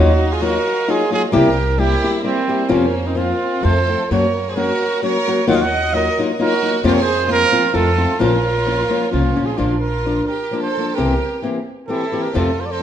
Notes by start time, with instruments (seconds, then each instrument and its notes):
Already playing: nylon-string guitar D#3 F#3 A#3 D#4 F4, violin section D#4 D#5 F5, trumpet F#4
0.00 upright bass D#2, violin section F#4
0.32 violin section F4, trumpet G#4
0.41 nylon-string guitar F#3 A#3 D#4 F4, violin section F#4, trumpet A#4
0.88 nylon-string guitar F#3 A#3 D#4 F4, violin section F4, trumpet G#4
1.10 nylon-string guitar F#3 A#3 D#4 F4, violin section F4, trumpet G#4
1.32 upright bass C2, nylon-string guitar C3 G3 A#3 E4 G4, violin section G4 C5, trumpet A#4
1.37 violin section A#3 E4
1.78 nylon-string guitar G3 A#3 E4 G4, violin section E4, trumpet G4
2.03 nylon-string guitar G3 A#3 E4 G4
2.24 nylon-string guitar G3 A#3 E4 G4, violin section G3, trumpet C4
2.48 nylon-string guitar G3 A#3 E4 G4
2.69 nylon-string guitar F2 C3 F3 A#3 C4 F4, upright bass F2, violin section A#3 F4, trumpet C#4
3.07 violin section C4, trumpet D#4
3.15 nylon-string guitar F3 A#3 C4 F4, violin section C4, trumpet F4
3.61 upright bass F2, nylon-string guitar F3 A3 C4 F4, violin section A3 A4, trumpet C5
3.87 nylon-string guitar F3 A3 C4 F4
4.10 upright bass F#2, nylon-string guitar F#3 A#3 C#4 F#4, violin section A#3 F#4 A#4 C#5, trumpet C#5
4.49 violin section G#4, trumpet C5
4.55 nylon-string guitar F#3 A#3 C#4 F#4, violin section F#4, trumpet A#4
5.02 nylon-string guitar F#3 A#3 C#4 F#4, violin section A#4, trumpet C#5
5.26 nylon-string guitar F#3 A#3 C#4 F#4
5.45 nylon-string guitar D#3 F#3 A#3 D#4 F4, violin section D#4 F#4 D#5, trumpet F#5
5.49 upright bass D#2, violin section D#5
5.54 violin section C#5, trumpet F5
5.62 violin section D#5, trumpet F#5
5.93 nylon-string guitar F#3 A#3 D#4 F4, violin section A#4, trumpet D#5
6.18 nylon-string guitar F#3 A#3 D#4 F4
6.39 nylon-string guitar F#3 A#3 D#4 F4, trumpet A#4
6.43 violin section F#4
6.62 nylon-string guitar F#3 A#3 D#4 F4
6.83 nylon-string guitar F2 C3 F3 A#3 C4 F4, upright bass F2, violin section A#3 F4 C5
6.88 violin section A#4, trumpet C5 C#5
6.99 violin section G#4, trumpet C5
7.28 nylon-string guitar F3 A#3 C4 F4, violin section F4, trumpet A#4
7.52 nylon-string guitar F3 A#3 C4 F4
7.73 upright bass F2, nylon-string guitar F3 A3 C4 F4, violin section F4, trumpet A4
7.79 violin section A3
7.96 nylon-string guitar F3 A3 C4 F4
8.19 upright bass A#1, nylon-string guitar A#2 F3 A#3 C#4 F4, violin section A#3 F4 C#5, trumpet A#4
8.66 nylon-string guitar F3 A#3 C#4 F4
8.89 nylon-string guitar F3 A#3 C#4 F4
9.11 upright bass C2, nylon-string guitar F3 A#3 C#4 F4, violin section C#4, trumpet F4
9.35 upright bass A#1, nylon-string guitar F3 A#3 C#4 F4
9.46 violin section F4, trumpet G#4
9.55 nylon-string guitar A#2 F3 A#3 D4 F4, violin section D4, trumpet F4
9.60 upright bass A#1
9.80 violin section F4, trumpet A#4
10.05 nylon-string guitar F3 A#3 D4 F4
10.27 violin section G4, trumpet A#4
10.51 nylon-string guitar F3 A#3 D4 F4
10.60 violin section A4, trumpet C5
10.77 nylon-string guitar F3 A#3 D4 F4
10.95 upright bass C2, nylon-string guitar C3 E3 A#3 C4, violin section G4, trumpet A#4
10.99 nylon-string guitar G4
11.42 nylon-string guitar E3 A#3 C4 G4
11.87 nylon-string guitar E3 A#3 C4 G4, violin section E4, trumpet A4
12.12 nylon-string guitar E3 A#3 C4 G4
12.22 violin section G4, trumpet A#4
12.34 nylon-string guitar F2 C3 F3 A3 C4 F4, upright bass F2, violin section F4, trumpet A4
12.60 violin section A4, trumpet C5
12.65 violin section A#4, trumpet D5
12.71 violin section A4, trumpet C5
12.79 nylon-string guitar F3